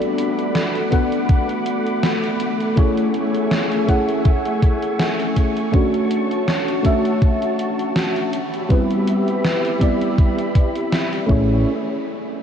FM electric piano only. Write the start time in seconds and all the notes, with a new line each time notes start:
Already playing: B3 D4 F#4 A4 D5
0.90 B3 D4 F#4 A4 F#5
2.76 A3 C#4 E4 G#4 C#5
3.86 A3 C#4 E4 G#4 F#5
5.72 A3 C#4 D4 F#4 C#5
6.83 A3 C#4 D4 F#4 E5
8.69 G3 B3 C4 E4 B4
9.79 G3 B3 C4 E4 D5
11.26 A3 C#4 E4 G#4
11.31 C#5